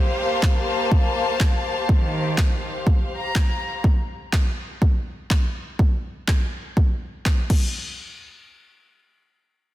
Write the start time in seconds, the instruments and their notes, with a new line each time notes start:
Already playing: string section A#3 G4 C5 F5
0.19 string section A5
0.43 kick, clap
0.92 kick
1.40 kick, clap
1.89 string section D#3, kick
2.38 kick, clap
2.87 kick
3.18 string section A#5
3.35 kick, clap
3.84 kick
4.33 kick, clap
4.82 kick
5.30 kick, clap
5.79 kick
6.28 kick, clap
6.77 kick
7.26 kick, clap
7.50 kick, crash